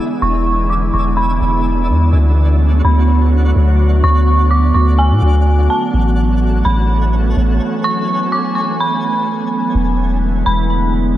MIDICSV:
0, 0, Header, 1, 5, 480
1, 0, Start_track
1, 0, Tempo, 476190
1, 224, Time_signature, 4, 2, 24, 8
1, 11263, End_track
2, 0, Start_track
2, 0, Title_t, "Synth bell"
2, 0, Program_c, 0, 98
2, 223, Note_on_c, 0, 85, 104
2, 675, Note_off_c, 0, 85, 0
2, 703, Note_on_c, 0, 86, 70
2, 932, Note_off_c, 0, 86, 0
2, 943, Note_on_c, 0, 85, 69
2, 1172, Note_off_c, 0, 85, 0
2, 1177, Note_on_c, 0, 83, 89
2, 2100, Note_off_c, 0, 83, 0
2, 2869, Note_on_c, 0, 83, 73
2, 3094, Note_off_c, 0, 83, 0
2, 4069, Note_on_c, 0, 85, 102
2, 4518, Note_off_c, 0, 85, 0
2, 4542, Note_on_c, 0, 86, 79
2, 4771, Note_off_c, 0, 86, 0
2, 4782, Note_on_c, 0, 85, 73
2, 5011, Note_off_c, 0, 85, 0
2, 5025, Note_on_c, 0, 80, 86
2, 5704, Note_off_c, 0, 80, 0
2, 5745, Note_on_c, 0, 81, 75
2, 5973, Note_off_c, 0, 81, 0
2, 6702, Note_on_c, 0, 83, 74
2, 6931, Note_off_c, 0, 83, 0
2, 7905, Note_on_c, 0, 85, 99
2, 8356, Note_off_c, 0, 85, 0
2, 8388, Note_on_c, 0, 86, 75
2, 8614, Note_off_c, 0, 86, 0
2, 8621, Note_on_c, 0, 85, 70
2, 8850, Note_off_c, 0, 85, 0
2, 8874, Note_on_c, 0, 83, 83
2, 9789, Note_off_c, 0, 83, 0
2, 10544, Note_on_c, 0, 83, 75
2, 10772, Note_off_c, 0, 83, 0
2, 11263, End_track
3, 0, Start_track
3, 0, Title_t, "Synth texture"
3, 0, Program_c, 1, 99
3, 0, Note_on_c, 1, 62, 75
3, 0, Note_on_c, 1, 68, 69
3, 0, Note_on_c, 1, 76, 83
3, 2105, Note_off_c, 1, 68, 0
3, 2105, Note_off_c, 1, 76, 0
3, 2142, Note_on_c, 1, 78, 85
3, 2144, Note_on_c, 1, 73, 68
3, 4045, Note_off_c, 1, 73, 0
3, 4065, Note_on_c, 1, 74, 70
3, 5944, Note_off_c, 1, 62, 0
3, 5965, Note_off_c, 1, 74, 0
3, 5983, Note_on_c, 1, 61, 72
3, 5985, Note_on_c, 1, 69, 69
3, 7863, Note_off_c, 1, 78, 0
3, 7904, Note_on_c, 1, 80, 83
3, 9785, Note_off_c, 1, 61, 0
3, 9786, Note_off_c, 1, 69, 0
3, 9805, Note_off_c, 1, 80, 0
3, 11263, End_track
4, 0, Start_track
4, 0, Title_t, "Ambient pad"
4, 0, Program_c, 2, 92
4, 0, Note_on_c, 2, 50, 81
4, 0, Note_on_c, 2, 52, 74
4, 0, Note_on_c, 2, 56, 73
4, 0, Note_on_c, 2, 59, 78
4, 0, Note_on_c, 2, 64, 89
4, 2103, Note_off_c, 2, 52, 0
4, 2103, Note_off_c, 2, 56, 0
4, 2104, Note_off_c, 2, 64, 0
4, 2141, Note_on_c, 2, 57, 74
4, 2143, Note_on_c, 2, 66, 86
4, 2144, Note_on_c, 2, 54, 76
4, 5944, Note_off_c, 2, 50, 0
4, 5944, Note_off_c, 2, 57, 0
4, 5984, Note_on_c, 2, 57, 79
4, 5986, Note_on_c, 2, 52, 85
4, 7863, Note_off_c, 2, 66, 0
4, 7906, Note_on_c, 2, 80, 93
4, 9784, Note_off_c, 2, 54, 0
4, 9786, Note_off_c, 2, 52, 0
4, 9786, Note_off_c, 2, 57, 0
4, 9786, Note_off_c, 2, 59, 0
4, 9806, Note_off_c, 2, 80, 0
4, 9824, Note_on_c, 2, 52, 77
4, 9826, Note_on_c, 2, 56, 81
4, 9827, Note_on_c, 2, 50, 83
4, 9827, Note_on_c, 2, 59, 77
4, 9827, Note_on_c, 2, 64, 98
4, 11263, Note_off_c, 2, 50, 0
4, 11263, Note_off_c, 2, 52, 0
4, 11263, Note_off_c, 2, 56, 0
4, 11263, Note_off_c, 2, 59, 0
4, 11263, Note_off_c, 2, 64, 0
4, 11263, End_track
5, 0, Start_track
5, 0, Title_t, "808-style bass"
5, 0, Program_c, 3, 38
5, 222, Note_on_c, 3, 28, 103
5, 914, Note_off_c, 3, 28, 0
5, 943, Note_on_c, 3, 28, 94
5, 1405, Note_off_c, 3, 28, 0
5, 1423, Note_on_c, 3, 28, 98
5, 1904, Note_on_c, 3, 40, 91
5, 1919, Note_off_c, 3, 28, 0
5, 2132, Note_off_c, 3, 40, 0
5, 2144, Note_on_c, 3, 38, 109
5, 2836, Note_off_c, 3, 38, 0
5, 2865, Note_on_c, 3, 38, 100
5, 3556, Note_off_c, 3, 38, 0
5, 3587, Note_on_c, 3, 38, 111
5, 4046, Note_off_c, 3, 38, 0
5, 4065, Note_on_c, 3, 38, 106
5, 4756, Note_off_c, 3, 38, 0
5, 4785, Note_on_c, 3, 38, 99
5, 5145, Note_on_c, 3, 45, 101
5, 5160, Note_off_c, 3, 38, 0
5, 5259, Note_off_c, 3, 45, 0
5, 5265, Note_on_c, 3, 38, 99
5, 5725, Note_off_c, 3, 38, 0
5, 5985, Note_on_c, 3, 33, 106
5, 6676, Note_off_c, 3, 33, 0
5, 6704, Note_on_c, 3, 33, 103
5, 7395, Note_off_c, 3, 33, 0
5, 7424, Note_on_c, 3, 33, 110
5, 7655, Note_off_c, 3, 33, 0
5, 9825, Note_on_c, 3, 28, 118
5, 10516, Note_off_c, 3, 28, 0
5, 10547, Note_on_c, 3, 28, 102
5, 11237, Note_off_c, 3, 28, 0
5, 11263, End_track
0, 0, End_of_file